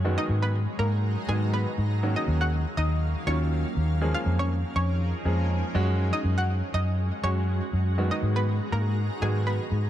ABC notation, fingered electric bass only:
X:1
M:4/4
L:1/8
Q:1/4=121
K:Abdor
V:1 name="Fingered electric bass" clef=bass
G,, A,,2 A,,2 A,,2 A,,- | A,, E,,2 E,,2 E,,2 E,,- | E,, F,,2 F,,2 F,,2 G,,- | G,, G,,2 G,,2 G,,2 G,,- |
G,, A,,2 A,,2 A,,2 A,, |]